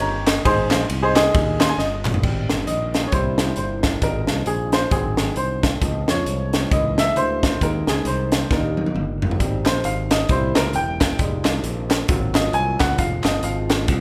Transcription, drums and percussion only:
0.00 ride medium
0.27 snare loud
0.27 clap loud
0.27 ride medium
0.45 kick medium
0.45 ride medium
0.71 snare medium
0.71 clap loud
0.71 ride medium
0.90 ride medium
1.16 snare loud
1.16 clap loud
1.16 ride medium
1.34 kick loud
1.34 ride medium
1.60 snare loud
1.60 clap loud
1.60 ride medium
1.79 snare medium
2.05 clap loud
2.05 mid tom loud
2.14 floor tom medium
2.23 kick medium
2.23 crash medium
2.49 snare medium
2.49 closed hi-hat medium
2.67 closed hi-hat medium
2.94 snare medium
2.94 closed hi-hat medium
3.12 kick medium
3.12 closed hi-hat medium
3.38 snare medium
3.38 closed hi-hat medium
3.56 closed hi-hat medium
3.83 kick medium
3.83 snare loud
3.83 closed hi-hat medium
4.02 kick medium
4.02 closed hi-hat medium
4.27 snare medium
4.27 closed hi-hat medium
4.46 closed hi-hat medium
4.72 snare loud
4.72 closed hi-hat medium
4.91 kick loud
4.91 closed hi-hat medium
5.17 snare medium
5.17 closed hi-hat medium
5.36 closed hi-hat medium
5.63 kick medium
5.63 snare loud
5.63 closed hi-hat medium
5.82 kick medium
5.82 closed hi-hat medium
6.08 snare medium
6.08 closed hi-hat medium
6.26 closed hi-hat medium
6.53 snare loud
6.53 closed hi-hat medium
6.71 kick loud
6.71 closed hi-hat medium
6.98 snare medium
6.98 closed hi-hat medium
7.16 closed hi-hat medium
7.43 kick medium
7.43 snare medium
7.43 closed hi-hat medium
7.61 kick medium
7.61 closed hi-hat medium
7.87 snare medium
7.87 closed hi-hat medium
8.05 closed hi-hat medium
8.32 snare loud
8.32 closed hi-hat medium
8.51 kick loud
8.51 snare medium
8.77 high tom medium
8.86 high tom medium
8.96 mid tom medium
9.22 floor tom medium
9.31 floor tom medium
9.40 kick medium
9.40 closed hi-hat medium
9.65 snare loud
9.65 clap medium
9.65 closed hi-hat medium
9.84 closed hi-hat medium
10.11 snare loud
10.11 clap loud
10.11 closed hi-hat medium
10.29 kick loud
10.29 closed hi-hat medium
10.55 snare loud
10.55 clap medium
10.55 closed hi-hat medium
10.73 closed hi-hat medium
11.01 kick medium
11.01 snare loud
11.01 clap medium
11.01 closed hi-hat medium
11.19 kick medium
11.19 closed hi-hat medium
11.45 snare medium
11.45 clap medium
11.45 closed hi-hat medium
11.64 closed hi-hat medium
11.90 snare loud
11.90 clap medium
11.90 closed hi-hat medium
12.08 kick loud
12.08 closed hi-hat medium
12.35 snare loud
12.35 clap loud
12.35 closed hi-hat medium
12.53 closed hi-hat medium
12.80 kick medium
12.80 snare loud
12.80 clap medium
12.80 closed hi-hat medium
12.98 kick medium
12.98 closed hi-hat medium
13.23 snare loud
13.23 clap medium
13.23 closed hi-hat medium
13.43 closed hi-hat medium
13.70 snare loud
13.70 clap medium
13.70 closed hi-hat medium
13.88 kick loud
13.88 closed hi-hat medium

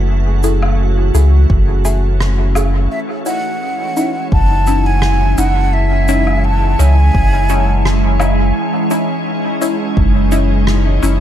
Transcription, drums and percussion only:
0.43 shaker medium
0.62 low woodblock medium
1.15 shaker medium
1.50 kick loud
1.85 shaker medium
2.21 cross-stick medium
2.55 low woodblock medium
2.55 shaker medium
3.26 shaker medium
3.97 shaker medium
4.32 kick loud
4.67 shaker medium
5.02 cross-stick medium
5.38 shaker medium
6.08 shaker medium
6.27 low woodblock medium
6.80 shaker medium
7.14 kick loud
7.49 shaker medium
7.86 cross-stick medium
8.20 low woodblock medium
8.20 shaker medium
8.90 shaker medium
9.62 shaker medium
9.97 kick loud
10.32 shaker medium
10.67 cross-stick medium
11.03 shaker medium

